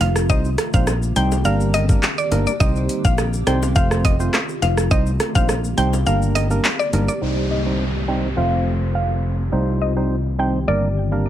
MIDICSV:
0, 0, Header, 1, 7, 480
1, 0, Start_track
1, 0, Tempo, 576923
1, 246, Time_signature, 4, 2, 24, 8
1, 9396, End_track
2, 0, Start_track
2, 0, Title_t, "Synth pluck"
2, 0, Program_c, 0, 84
2, 6, Note_on_c, 0, 77, 82
2, 100, Note_off_c, 0, 77, 0
2, 247, Note_on_c, 0, 75, 101
2, 340, Note_off_c, 0, 75, 0
2, 615, Note_on_c, 0, 77, 88
2, 698, Note_off_c, 0, 77, 0
2, 968, Note_on_c, 0, 79, 87
2, 1061, Note_off_c, 0, 79, 0
2, 1207, Note_on_c, 0, 77, 88
2, 1300, Note_off_c, 0, 77, 0
2, 1447, Note_on_c, 0, 75, 97
2, 1540, Note_off_c, 0, 75, 0
2, 1815, Note_on_c, 0, 74, 83
2, 1898, Note_off_c, 0, 74, 0
2, 2054, Note_on_c, 0, 74, 72
2, 2137, Note_off_c, 0, 74, 0
2, 2165, Note_on_c, 0, 75, 105
2, 2259, Note_off_c, 0, 75, 0
2, 2535, Note_on_c, 0, 77, 80
2, 2617, Note_off_c, 0, 77, 0
2, 2886, Note_on_c, 0, 79, 80
2, 2980, Note_off_c, 0, 79, 0
2, 3126, Note_on_c, 0, 77, 86
2, 3220, Note_off_c, 0, 77, 0
2, 3367, Note_on_c, 0, 75, 91
2, 3460, Note_off_c, 0, 75, 0
2, 3846, Note_on_c, 0, 77, 77
2, 3940, Note_off_c, 0, 77, 0
2, 4086, Note_on_c, 0, 75, 103
2, 4180, Note_off_c, 0, 75, 0
2, 4453, Note_on_c, 0, 77, 93
2, 4536, Note_off_c, 0, 77, 0
2, 4806, Note_on_c, 0, 79, 93
2, 4900, Note_off_c, 0, 79, 0
2, 5047, Note_on_c, 0, 77, 87
2, 5140, Note_off_c, 0, 77, 0
2, 5286, Note_on_c, 0, 75, 99
2, 5380, Note_off_c, 0, 75, 0
2, 5653, Note_on_c, 0, 74, 82
2, 5736, Note_off_c, 0, 74, 0
2, 5894, Note_on_c, 0, 74, 72
2, 5977, Note_off_c, 0, 74, 0
2, 6248, Note_on_c, 0, 75, 73
2, 6341, Note_off_c, 0, 75, 0
2, 6726, Note_on_c, 0, 79, 76
2, 6820, Note_off_c, 0, 79, 0
2, 6966, Note_on_c, 0, 77, 102
2, 7311, Note_off_c, 0, 77, 0
2, 7447, Note_on_c, 0, 77, 79
2, 7792, Note_off_c, 0, 77, 0
2, 8166, Note_on_c, 0, 75, 81
2, 8260, Note_off_c, 0, 75, 0
2, 8648, Note_on_c, 0, 79, 82
2, 8741, Note_off_c, 0, 79, 0
2, 8886, Note_on_c, 0, 74, 104
2, 9231, Note_off_c, 0, 74, 0
2, 9396, End_track
3, 0, Start_track
3, 0, Title_t, "Synth stab"
3, 0, Program_c, 1, 62
3, 246, Note_on_c, 1, 55, 95
3, 248, Note_on_c, 1, 60, 89
3, 249, Note_on_c, 1, 63, 88
3, 251, Note_on_c, 1, 72, 106
3, 414, Note_off_c, 1, 55, 0
3, 415, Note_off_c, 1, 60, 0
3, 415, Note_off_c, 1, 63, 0
3, 416, Note_off_c, 1, 72, 0
3, 612, Note_on_c, 1, 55, 78
3, 614, Note_on_c, 1, 60, 71
3, 615, Note_on_c, 1, 63, 72
3, 617, Note_on_c, 1, 72, 84
3, 771, Note_off_c, 1, 55, 0
3, 772, Note_off_c, 1, 60, 0
3, 773, Note_off_c, 1, 63, 0
3, 774, Note_off_c, 1, 72, 0
3, 965, Note_on_c, 1, 55, 83
3, 967, Note_on_c, 1, 60, 78
3, 968, Note_on_c, 1, 63, 76
3, 970, Note_on_c, 1, 72, 86
3, 1133, Note_off_c, 1, 55, 0
3, 1134, Note_off_c, 1, 60, 0
3, 1135, Note_off_c, 1, 63, 0
3, 1136, Note_off_c, 1, 72, 0
3, 1205, Note_on_c, 1, 55, 96
3, 1207, Note_on_c, 1, 58, 93
3, 1208, Note_on_c, 1, 62, 91
3, 1210, Note_on_c, 1, 70, 108
3, 1543, Note_off_c, 1, 55, 0
3, 1543, Note_off_c, 1, 58, 0
3, 1544, Note_off_c, 1, 62, 0
3, 1545, Note_off_c, 1, 70, 0
3, 1571, Note_on_c, 1, 55, 78
3, 1572, Note_on_c, 1, 58, 74
3, 1574, Note_on_c, 1, 62, 77
3, 1576, Note_on_c, 1, 70, 89
3, 1730, Note_off_c, 1, 55, 0
3, 1731, Note_off_c, 1, 58, 0
3, 1732, Note_off_c, 1, 62, 0
3, 1733, Note_off_c, 1, 70, 0
3, 1924, Note_on_c, 1, 55, 76
3, 1925, Note_on_c, 1, 58, 71
3, 1928, Note_on_c, 1, 62, 69
3, 1928, Note_on_c, 1, 70, 89
3, 2093, Note_off_c, 1, 55, 0
3, 2093, Note_off_c, 1, 58, 0
3, 2095, Note_off_c, 1, 62, 0
3, 2095, Note_off_c, 1, 70, 0
3, 2163, Note_on_c, 1, 55, 98
3, 2165, Note_on_c, 1, 60, 90
3, 2165, Note_on_c, 1, 63, 87
3, 2167, Note_on_c, 1, 72, 101
3, 2609, Note_off_c, 1, 55, 0
3, 2609, Note_off_c, 1, 60, 0
3, 2610, Note_off_c, 1, 63, 0
3, 2611, Note_off_c, 1, 72, 0
3, 2885, Note_on_c, 1, 55, 81
3, 2886, Note_on_c, 1, 60, 77
3, 2888, Note_on_c, 1, 63, 72
3, 2889, Note_on_c, 1, 72, 93
3, 3053, Note_off_c, 1, 55, 0
3, 3054, Note_off_c, 1, 60, 0
3, 3055, Note_off_c, 1, 63, 0
3, 3055, Note_off_c, 1, 72, 0
3, 3122, Note_on_c, 1, 57, 94
3, 3124, Note_on_c, 1, 60, 88
3, 3126, Note_on_c, 1, 65, 88
3, 3128, Note_on_c, 1, 72, 109
3, 3461, Note_off_c, 1, 57, 0
3, 3462, Note_off_c, 1, 60, 0
3, 3463, Note_off_c, 1, 65, 0
3, 3464, Note_off_c, 1, 72, 0
3, 3490, Note_on_c, 1, 57, 81
3, 3493, Note_on_c, 1, 60, 74
3, 3494, Note_on_c, 1, 65, 74
3, 3495, Note_on_c, 1, 72, 88
3, 3650, Note_off_c, 1, 57, 0
3, 3651, Note_off_c, 1, 60, 0
3, 3652, Note_off_c, 1, 65, 0
3, 3653, Note_off_c, 1, 72, 0
3, 4084, Note_on_c, 1, 55, 99
3, 4085, Note_on_c, 1, 60, 90
3, 4087, Note_on_c, 1, 63, 88
3, 4088, Note_on_c, 1, 72, 106
3, 4253, Note_off_c, 1, 55, 0
3, 4253, Note_off_c, 1, 60, 0
3, 4254, Note_off_c, 1, 63, 0
3, 4255, Note_off_c, 1, 72, 0
3, 4451, Note_on_c, 1, 55, 75
3, 4454, Note_on_c, 1, 60, 68
3, 4455, Note_on_c, 1, 63, 70
3, 4457, Note_on_c, 1, 72, 87
3, 4611, Note_off_c, 1, 55, 0
3, 4612, Note_off_c, 1, 60, 0
3, 4612, Note_off_c, 1, 63, 0
3, 4614, Note_off_c, 1, 72, 0
3, 4804, Note_on_c, 1, 55, 84
3, 4806, Note_on_c, 1, 60, 75
3, 4807, Note_on_c, 1, 63, 78
3, 4809, Note_on_c, 1, 72, 92
3, 4973, Note_off_c, 1, 55, 0
3, 4974, Note_off_c, 1, 60, 0
3, 4974, Note_off_c, 1, 63, 0
3, 4975, Note_off_c, 1, 72, 0
3, 5045, Note_on_c, 1, 55, 98
3, 5047, Note_on_c, 1, 58, 89
3, 5049, Note_on_c, 1, 62, 89
3, 5050, Note_on_c, 1, 70, 106
3, 5382, Note_off_c, 1, 55, 0
3, 5384, Note_off_c, 1, 58, 0
3, 5384, Note_off_c, 1, 62, 0
3, 5385, Note_off_c, 1, 70, 0
3, 5412, Note_on_c, 1, 55, 82
3, 5412, Note_on_c, 1, 58, 72
3, 5415, Note_on_c, 1, 62, 75
3, 5416, Note_on_c, 1, 70, 85
3, 5571, Note_off_c, 1, 55, 0
3, 5571, Note_off_c, 1, 58, 0
3, 5572, Note_off_c, 1, 62, 0
3, 5573, Note_off_c, 1, 70, 0
3, 5765, Note_on_c, 1, 55, 77
3, 5766, Note_on_c, 1, 58, 70
3, 5768, Note_on_c, 1, 62, 68
3, 5770, Note_on_c, 1, 70, 87
3, 5933, Note_off_c, 1, 55, 0
3, 5934, Note_off_c, 1, 58, 0
3, 5935, Note_off_c, 1, 62, 0
3, 5936, Note_off_c, 1, 70, 0
3, 6003, Note_on_c, 1, 55, 92
3, 6005, Note_on_c, 1, 60, 83
3, 6007, Note_on_c, 1, 63, 84
3, 6008, Note_on_c, 1, 72, 97
3, 6342, Note_off_c, 1, 55, 0
3, 6343, Note_off_c, 1, 60, 0
3, 6343, Note_off_c, 1, 63, 0
3, 6344, Note_off_c, 1, 72, 0
3, 6370, Note_on_c, 1, 55, 74
3, 6371, Note_on_c, 1, 60, 66
3, 6374, Note_on_c, 1, 63, 67
3, 6375, Note_on_c, 1, 72, 82
3, 6530, Note_off_c, 1, 55, 0
3, 6531, Note_off_c, 1, 60, 0
3, 6532, Note_off_c, 1, 63, 0
3, 6532, Note_off_c, 1, 72, 0
3, 6722, Note_on_c, 1, 55, 77
3, 6723, Note_on_c, 1, 60, 70
3, 6725, Note_on_c, 1, 63, 72
3, 6726, Note_on_c, 1, 72, 88
3, 6892, Note_off_c, 1, 55, 0
3, 6892, Note_off_c, 1, 60, 0
3, 6893, Note_off_c, 1, 63, 0
3, 6894, Note_off_c, 1, 72, 0
3, 6961, Note_on_c, 1, 57, 93
3, 6963, Note_on_c, 1, 60, 86
3, 6964, Note_on_c, 1, 65, 88
3, 6966, Note_on_c, 1, 72, 102
3, 7852, Note_off_c, 1, 57, 0
3, 7852, Note_off_c, 1, 60, 0
3, 7853, Note_off_c, 1, 65, 0
3, 7854, Note_off_c, 1, 72, 0
3, 7922, Note_on_c, 1, 55, 93
3, 7923, Note_on_c, 1, 60, 80
3, 7924, Note_on_c, 1, 63, 79
3, 7926, Note_on_c, 1, 72, 100
3, 8261, Note_off_c, 1, 55, 0
3, 8261, Note_off_c, 1, 60, 0
3, 8262, Note_off_c, 1, 63, 0
3, 8263, Note_off_c, 1, 72, 0
3, 8288, Note_on_c, 1, 55, 74
3, 8291, Note_on_c, 1, 60, 68
3, 8292, Note_on_c, 1, 63, 69
3, 8293, Note_on_c, 1, 72, 83
3, 8449, Note_off_c, 1, 55, 0
3, 8450, Note_off_c, 1, 60, 0
3, 8451, Note_off_c, 1, 63, 0
3, 8452, Note_off_c, 1, 72, 0
3, 8641, Note_on_c, 1, 55, 75
3, 8643, Note_on_c, 1, 60, 72
3, 8644, Note_on_c, 1, 63, 70
3, 8646, Note_on_c, 1, 72, 86
3, 8811, Note_off_c, 1, 55, 0
3, 8812, Note_off_c, 1, 60, 0
3, 8813, Note_off_c, 1, 63, 0
3, 8814, Note_off_c, 1, 72, 0
3, 8882, Note_on_c, 1, 55, 91
3, 8884, Note_on_c, 1, 58, 84
3, 8885, Note_on_c, 1, 62, 82
3, 8888, Note_on_c, 1, 70, 100
3, 9052, Note_off_c, 1, 55, 0
3, 9053, Note_off_c, 1, 58, 0
3, 9053, Note_off_c, 1, 62, 0
3, 9055, Note_off_c, 1, 70, 0
3, 9249, Note_on_c, 1, 55, 77
3, 9252, Note_on_c, 1, 58, 68
3, 9254, Note_on_c, 1, 62, 72
3, 9255, Note_on_c, 1, 70, 81
3, 9396, Note_off_c, 1, 55, 0
3, 9396, Note_off_c, 1, 58, 0
3, 9396, Note_off_c, 1, 62, 0
3, 9396, Note_off_c, 1, 70, 0
3, 9396, End_track
4, 0, Start_track
4, 0, Title_t, "Ambient pad"
4, 0, Program_c, 2, 92
4, 0, Note_on_c, 2, 48, 79
4, 0, Note_on_c, 2, 57, 71
4, 0, Note_on_c, 2, 65, 82
4, 237, Note_off_c, 2, 48, 0
4, 237, Note_off_c, 2, 57, 0
4, 237, Note_off_c, 2, 65, 0
4, 247, Note_on_c, 2, 67, 85
4, 248, Note_on_c, 2, 51, 77
4, 248, Note_on_c, 2, 60, 73
4, 1198, Note_off_c, 2, 51, 0
4, 1198, Note_off_c, 2, 60, 0
4, 1206, Note_on_c, 2, 58, 73
4, 1207, Note_on_c, 2, 50, 73
4, 2157, Note_off_c, 2, 50, 0
4, 2157, Note_off_c, 2, 58, 0
4, 2165, Note_on_c, 2, 60, 73
4, 2166, Note_on_c, 2, 51, 79
4, 3098, Note_off_c, 2, 67, 0
4, 3116, Note_off_c, 2, 60, 0
4, 3117, Note_off_c, 2, 51, 0
4, 3128, Note_on_c, 2, 48, 73
4, 3128, Note_on_c, 2, 57, 67
4, 3128, Note_on_c, 2, 65, 85
4, 4077, Note_off_c, 2, 48, 0
4, 4078, Note_off_c, 2, 57, 0
4, 4078, Note_off_c, 2, 65, 0
4, 4085, Note_on_c, 2, 60, 70
4, 4085, Note_on_c, 2, 67, 88
4, 4086, Note_on_c, 2, 51, 75
4, 5037, Note_off_c, 2, 51, 0
4, 5037, Note_off_c, 2, 60, 0
4, 5046, Note_on_c, 2, 50, 74
4, 5046, Note_on_c, 2, 58, 72
4, 5987, Note_off_c, 2, 67, 0
4, 5997, Note_off_c, 2, 50, 0
4, 5997, Note_off_c, 2, 58, 0
4, 6007, Note_on_c, 2, 51, 75
4, 6008, Note_on_c, 2, 60, 64
4, 6008, Note_on_c, 2, 67, 84
4, 6957, Note_off_c, 2, 51, 0
4, 6958, Note_off_c, 2, 60, 0
4, 6958, Note_off_c, 2, 67, 0
4, 6964, Note_on_c, 2, 48, 71
4, 6965, Note_on_c, 2, 57, 68
4, 6965, Note_on_c, 2, 65, 79
4, 7916, Note_off_c, 2, 48, 0
4, 7916, Note_off_c, 2, 57, 0
4, 7916, Note_off_c, 2, 65, 0
4, 7926, Note_on_c, 2, 51, 75
4, 7926, Note_on_c, 2, 60, 66
4, 7927, Note_on_c, 2, 67, 85
4, 8877, Note_off_c, 2, 51, 0
4, 8877, Note_off_c, 2, 60, 0
4, 8887, Note_on_c, 2, 50, 72
4, 8887, Note_on_c, 2, 58, 66
4, 9396, Note_off_c, 2, 50, 0
4, 9396, Note_off_c, 2, 58, 0
4, 9396, Note_off_c, 2, 67, 0
4, 9396, End_track
5, 0, Start_track
5, 0, Title_t, "Fretless electric bass"
5, 0, Program_c, 3, 35
5, 6, Note_on_c, 3, 29, 99
5, 220, Note_off_c, 3, 29, 0
5, 246, Note_on_c, 3, 36, 104
5, 460, Note_off_c, 3, 36, 0
5, 614, Note_on_c, 3, 34, 92
5, 927, Note_off_c, 3, 34, 0
5, 967, Note_on_c, 3, 36, 87
5, 1180, Note_off_c, 3, 36, 0
5, 1206, Note_on_c, 3, 31, 97
5, 1632, Note_off_c, 3, 31, 0
5, 1928, Note_on_c, 3, 31, 100
5, 2040, Note_off_c, 3, 31, 0
5, 2167, Note_on_c, 3, 36, 105
5, 2380, Note_off_c, 3, 36, 0
5, 2535, Note_on_c, 3, 34, 88
5, 2848, Note_off_c, 3, 34, 0
5, 2887, Note_on_c, 3, 36, 85
5, 3100, Note_off_c, 3, 36, 0
5, 3128, Note_on_c, 3, 29, 100
5, 3554, Note_off_c, 3, 29, 0
5, 3847, Note_on_c, 3, 29, 97
5, 4060, Note_off_c, 3, 29, 0
5, 4086, Note_on_c, 3, 36, 106
5, 4299, Note_off_c, 3, 36, 0
5, 4455, Note_on_c, 3, 34, 87
5, 4768, Note_off_c, 3, 34, 0
5, 4807, Note_on_c, 3, 36, 89
5, 5020, Note_off_c, 3, 36, 0
5, 5048, Note_on_c, 3, 31, 99
5, 5474, Note_off_c, 3, 31, 0
5, 5767, Note_on_c, 3, 31, 95
5, 5880, Note_off_c, 3, 31, 0
5, 6007, Note_on_c, 3, 36, 73
5, 6934, Note_off_c, 3, 36, 0
5, 6967, Note_on_c, 3, 29, 76
5, 7894, Note_off_c, 3, 29, 0
5, 7927, Note_on_c, 3, 36, 77
5, 8853, Note_off_c, 3, 36, 0
5, 8887, Note_on_c, 3, 31, 79
5, 9396, Note_off_c, 3, 31, 0
5, 9396, End_track
6, 0, Start_track
6, 0, Title_t, "Downlifter"
6, 0, Program_c, 4, 103
6, 6006, Note_on_c, 4, 60, 77
6, 9396, Note_off_c, 4, 60, 0
6, 9396, End_track
7, 0, Start_track
7, 0, Title_t, "Drums"
7, 6, Note_on_c, 9, 42, 66
7, 6, Note_on_c, 9, 82, 48
7, 8, Note_on_c, 9, 61, 73
7, 89, Note_off_c, 9, 42, 0
7, 89, Note_off_c, 9, 82, 0
7, 92, Note_off_c, 9, 61, 0
7, 130, Note_on_c, 9, 37, 83
7, 133, Note_on_c, 9, 82, 84
7, 214, Note_off_c, 9, 37, 0
7, 217, Note_off_c, 9, 82, 0
7, 246, Note_on_c, 9, 36, 109
7, 246, Note_on_c, 9, 82, 82
7, 329, Note_off_c, 9, 36, 0
7, 329, Note_off_c, 9, 82, 0
7, 371, Note_on_c, 9, 82, 48
7, 455, Note_off_c, 9, 82, 0
7, 484, Note_on_c, 9, 42, 73
7, 484, Note_on_c, 9, 82, 50
7, 485, Note_on_c, 9, 37, 103
7, 567, Note_off_c, 9, 42, 0
7, 567, Note_off_c, 9, 82, 0
7, 568, Note_off_c, 9, 37, 0
7, 612, Note_on_c, 9, 82, 80
7, 614, Note_on_c, 9, 36, 95
7, 695, Note_off_c, 9, 82, 0
7, 697, Note_off_c, 9, 36, 0
7, 724, Note_on_c, 9, 60, 61
7, 725, Note_on_c, 9, 37, 92
7, 725, Note_on_c, 9, 82, 79
7, 807, Note_off_c, 9, 60, 0
7, 808, Note_off_c, 9, 37, 0
7, 808, Note_off_c, 9, 82, 0
7, 853, Note_on_c, 9, 82, 61
7, 936, Note_off_c, 9, 82, 0
7, 966, Note_on_c, 9, 42, 84
7, 966, Note_on_c, 9, 82, 60
7, 1049, Note_off_c, 9, 42, 0
7, 1049, Note_off_c, 9, 82, 0
7, 1095, Note_on_c, 9, 82, 75
7, 1098, Note_on_c, 9, 60, 74
7, 1179, Note_off_c, 9, 82, 0
7, 1181, Note_off_c, 9, 60, 0
7, 1204, Note_on_c, 9, 82, 76
7, 1287, Note_off_c, 9, 82, 0
7, 1336, Note_on_c, 9, 82, 61
7, 1419, Note_off_c, 9, 82, 0
7, 1447, Note_on_c, 9, 42, 72
7, 1447, Note_on_c, 9, 82, 53
7, 1452, Note_on_c, 9, 60, 78
7, 1530, Note_off_c, 9, 42, 0
7, 1530, Note_off_c, 9, 82, 0
7, 1535, Note_off_c, 9, 60, 0
7, 1573, Note_on_c, 9, 36, 98
7, 1574, Note_on_c, 9, 82, 75
7, 1656, Note_off_c, 9, 36, 0
7, 1657, Note_off_c, 9, 82, 0
7, 1688, Note_on_c, 9, 39, 95
7, 1688, Note_on_c, 9, 82, 72
7, 1692, Note_on_c, 9, 60, 74
7, 1771, Note_off_c, 9, 82, 0
7, 1772, Note_off_c, 9, 39, 0
7, 1775, Note_off_c, 9, 60, 0
7, 1814, Note_on_c, 9, 82, 43
7, 1897, Note_off_c, 9, 82, 0
7, 1927, Note_on_c, 9, 42, 68
7, 1927, Note_on_c, 9, 82, 47
7, 1930, Note_on_c, 9, 61, 78
7, 2010, Note_off_c, 9, 42, 0
7, 2010, Note_off_c, 9, 82, 0
7, 2013, Note_off_c, 9, 61, 0
7, 2054, Note_on_c, 9, 82, 84
7, 2138, Note_off_c, 9, 82, 0
7, 2167, Note_on_c, 9, 36, 109
7, 2167, Note_on_c, 9, 82, 81
7, 2250, Note_off_c, 9, 36, 0
7, 2250, Note_off_c, 9, 82, 0
7, 2294, Note_on_c, 9, 82, 44
7, 2377, Note_off_c, 9, 82, 0
7, 2406, Note_on_c, 9, 42, 69
7, 2406, Note_on_c, 9, 82, 51
7, 2490, Note_off_c, 9, 42, 0
7, 2490, Note_off_c, 9, 82, 0
7, 2534, Note_on_c, 9, 82, 82
7, 2535, Note_on_c, 9, 36, 100
7, 2617, Note_off_c, 9, 82, 0
7, 2618, Note_off_c, 9, 36, 0
7, 2645, Note_on_c, 9, 60, 61
7, 2647, Note_on_c, 9, 37, 93
7, 2647, Note_on_c, 9, 82, 84
7, 2728, Note_off_c, 9, 60, 0
7, 2730, Note_off_c, 9, 37, 0
7, 2730, Note_off_c, 9, 82, 0
7, 2774, Note_on_c, 9, 82, 65
7, 2857, Note_off_c, 9, 82, 0
7, 2886, Note_on_c, 9, 37, 93
7, 2887, Note_on_c, 9, 42, 83
7, 2887, Note_on_c, 9, 82, 58
7, 2969, Note_off_c, 9, 37, 0
7, 2970, Note_off_c, 9, 42, 0
7, 2970, Note_off_c, 9, 82, 0
7, 3017, Note_on_c, 9, 82, 78
7, 3018, Note_on_c, 9, 60, 77
7, 3100, Note_off_c, 9, 82, 0
7, 3101, Note_off_c, 9, 60, 0
7, 3124, Note_on_c, 9, 82, 78
7, 3129, Note_on_c, 9, 36, 99
7, 3208, Note_off_c, 9, 82, 0
7, 3212, Note_off_c, 9, 36, 0
7, 3254, Note_on_c, 9, 37, 92
7, 3257, Note_on_c, 9, 82, 58
7, 3337, Note_off_c, 9, 37, 0
7, 3340, Note_off_c, 9, 82, 0
7, 3367, Note_on_c, 9, 36, 116
7, 3368, Note_on_c, 9, 42, 72
7, 3368, Note_on_c, 9, 82, 53
7, 3371, Note_on_c, 9, 60, 77
7, 3450, Note_off_c, 9, 36, 0
7, 3451, Note_off_c, 9, 42, 0
7, 3451, Note_off_c, 9, 82, 0
7, 3454, Note_off_c, 9, 60, 0
7, 3494, Note_on_c, 9, 82, 73
7, 3577, Note_off_c, 9, 82, 0
7, 3608, Note_on_c, 9, 82, 70
7, 3609, Note_on_c, 9, 37, 89
7, 3609, Note_on_c, 9, 39, 87
7, 3611, Note_on_c, 9, 60, 73
7, 3691, Note_off_c, 9, 82, 0
7, 3692, Note_off_c, 9, 37, 0
7, 3692, Note_off_c, 9, 39, 0
7, 3694, Note_off_c, 9, 60, 0
7, 3735, Note_on_c, 9, 82, 42
7, 3818, Note_off_c, 9, 82, 0
7, 3847, Note_on_c, 9, 42, 67
7, 3847, Note_on_c, 9, 82, 49
7, 3849, Note_on_c, 9, 61, 78
7, 3931, Note_off_c, 9, 42, 0
7, 3931, Note_off_c, 9, 82, 0
7, 3932, Note_off_c, 9, 61, 0
7, 3972, Note_on_c, 9, 37, 86
7, 3975, Note_on_c, 9, 82, 84
7, 4055, Note_off_c, 9, 37, 0
7, 4058, Note_off_c, 9, 82, 0
7, 4086, Note_on_c, 9, 82, 83
7, 4087, Note_on_c, 9, 36, 110
7, 4169, Note_off_c, 9, 82, 0
7, 4170, Note_off_c, 9, 36, 0
7, 4213, Note_on_c, 9, 82, 44
7, 4296, Note_off_c, 9, 82, 0
7, 4325, Note_on_c, 9, 60, 47
7, 4326, Note_on_c, 9, 37, 102
7, 4326, Note_on_c, 9, 42, 69
7, 4326, Note_on_c, 9, 82, 55
7, 4409, Note_off_c, 9, 42, 0
7, 4409, Note_off_c, 9, 60, 0
7, 4409, Note_off_c, 9, 82, 0
7, 4410, Note_off_c, 9, 37, 0
7, 4453, Note_on_c, 9, 82, 78
7, 4455, Note_on_c, 9, 36, 99
7, 4536, Note_off_c, 9, 82, 0
7, 4538, Note_off_c, 9, 36, 0
7, 4565, Note_on_c, 9, 60, 64
7, 4567, Note_on_c, 9, 37, 94
7, 4567, Note_on_c, 9, 82, 84
7, 4648, Note_off_c, 9, 60, 0
7, 4650, Note_off_c, 9, 37, 0
7, 4650, Note_off_c, 9, 82, 0
7, 4694, Note_on_c, 9, 82, 63
7, 4777, Note_off_c, 9, 82, 0
7, 4807, Note_on_c, 9, 42, 79
7, 4807, Note_on_c, 9, 82, 60
7, 4890, Note_off_c, 9, 42, 0
7, 4890, Note_off_c, 9, 82, 0
7, 4937, Note_on_c, 9, 60, 74
7, 4937, Note_on_c, 9, 82, 75
7, 5020, Note_off_c, 9, 60, 0
7, 5020, Note_off_c, 9, 82, 0
7, 5046, Note_on_c, 9, 82, 79
7, 5129, Note_off_c, 9, 82, 0
7, 5177, Note_on_c, 9, 82, 60
7, 5260, Note_off_c, 9, 82, 0
7, 5288, Note_on_c, 9, 42, 75
7, 5288, Note_on_c, 9, 82, 51
7, 5291, Note_on_c, 9, 60, 73
7, 5371, Note_off_c, 9, 42, 0
7, 5371, Note_off_c, 9, 82, 0
7, 5374, Note_off_c, 9, 60, 0
7, 5414, Note_on_c, 9, 82, 73
7, 5497, Note_off_c, 9, 82, 0
7, 5528, Note_on_c, 9, 82, 69
7, 5529, Note_on_c, 9, 39, 95
7, 5531, Note_on_c, 9, 60, 73
7, 5612, Note_off_c, 9, 39, 0
7, 5612, Note_off_c, 9, 82, 0
7, 5615, Note_off_c, 9, 60, 0
7, 5655, Note_on_c, 9, 82, 41
7, 5738, Note_off_c, 9, 82, 0
7, 5767, Note_on_c, 9, 42, 67
7, 5767, Note_on_c, 9, 82, 48
7, 5770, Note_on_c, 9, 61, 77
7, 5850, Note_off_c, 9, 42, 0
7, 5850, Note_off_c, 9, 82, 0
7, 5853, Note_off_c, 9, 61, 0
7, 5894, Note_on_c, 9, 82, 82
7, 5978, Note_off_c, 9, 82, 0
7, 9396, End_track
0, 0, End_of_file